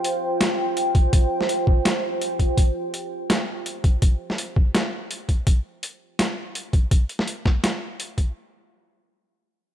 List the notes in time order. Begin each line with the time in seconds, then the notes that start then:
Already playing: F4 C5 G5
0.04 closed hi-hat
0.41 snare, closed hi-hat
0.77 closed hi-hat
0.95 kick, closed hi-hat
1.13 kick, closed hi-hat
1.41 snare
1.49 closed hi-hat
1.67 kick
1.85 snare, closed hi-hat
2.22 closed hi-hat
2.39 kick, closed hi-hat
2.57 kick, closed hi-hat
2.94 closed hi-hat
3.30 snare, closed hi-hat
3.66 closed hi-hat
3.84 kick, closed hi-hat
4.02 kick, closed hi-hat
4.30 snare
4.38 closed hi-hat
4.56 kick
4.75 snare, closed hi-hat
5.11 closed hi-hat
5.29 kick, closed hi-hat
5.47 kick, closed hi-hat
5.83 closed hi-hat
6.19 snare, closed hi-hat
6.55 closed hi-hat
6.73 kick, closed hi-hat
6.91 kick, closed hi-hat
7.09 closed hi-hat
7.19 snare
7.28 closed hi-hat
7.45 kick, snare
7.64 snare, closed hi-hat
8.00 closed hi-hat
8.18 kick, closed hi-hat